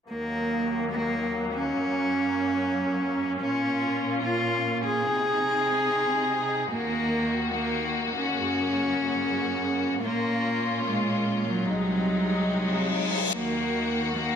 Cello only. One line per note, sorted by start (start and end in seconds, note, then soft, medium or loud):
0.09 0.84 A#3 loud
0.92 1.46 A#3 medium
1.54 3.32 C#4 loud
3.40 4.15 C#4 loud
4.23 4.77 F4 medium
4.85 6.63 G#4 loud
6.71 7.46 A#3 loud
7.54 8.08 A#3 medium
8.16 9.94 C#4 loud
10.02 10.77 A#3 loud
10.85 11.39 G#3 medium
11.47 13.25 F#3 loud
13.33 14.08 A#3 loud
14.16 14.36 A#3 medium